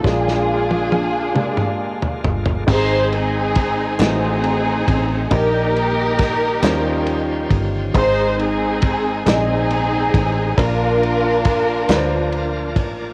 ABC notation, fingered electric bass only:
X:1
M:6/8
L:1/8
Q:3/8=46
K:Ablyd
V:1 name="Fingered electric bass" clef=bass
B,,,4- B,,, G,,, | A,,,3 =A,,,2 A,,, | B,,,3 E,,2 G,,, | A,,,3 B,,,2 =A,,, |
B,,,3 D,,2 =A,,, |]